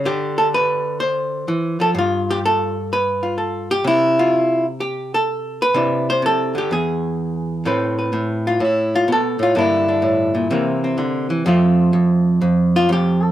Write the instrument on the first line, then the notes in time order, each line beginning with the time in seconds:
hollow-body jazz guitar
0.05 D3 G4
0.38 A4
0.54 B4
1.00 C5
1.48 E3
1.80 F3 A4
1.95 G2 F4
2.31 G4
2.45 A4
2.93 B4
3.23 F4
3.38 A4
3.71 G4
3.84 C3 E4
4.19 F4
4.80 G4
5.14 A4
5.62 B4
5.74 C3 D4 E4
6.10 C5
6.22 C3 A4
6.55 D3 G4
6.71 E2 G#4
7.65 A2 A3 C4 B4
7.99 B4
8.13 A2
8.47 F4
8.60 A2
8.64 E4
8.95 F4
9.08 B2
9.12 A4
9.39 A2 F4
9.55 G2 D3 A#3 D4 E4
9.88 D4
10.02 A2
10.35 A#2
10.51 C3 E3 A#3 C4
10.84 C4
10.98 D3
11.30 E3
11.46 F2 F3 A3 C4 F4
11.93 F2
12.41 F2
12.76 F4
12.89 F2 G4
13.23 A4